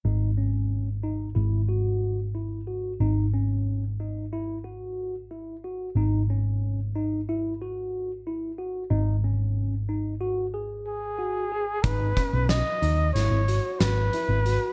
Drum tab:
HH |---------|---------|---------|---------|
SD |---------|---------|---------|---------|
BD |---------|---------|---------|---------|

HH |xxxxxxxxx|
SD |--o-o-o--|
BD |oo-------|